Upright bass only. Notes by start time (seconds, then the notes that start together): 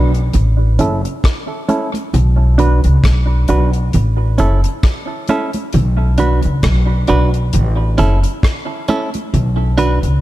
Already playing: B1
0.35 A1
0.79 F#1
2.14 B1
2.85 C#2
3.04 B1
3.49 B1
3.94 A1
4.40 F#1
5.74 B1
6.45 C#2
6.63 B1
7.10 B1
7.54 A1
7.99 F#1
9.34 B1
10.03 C#2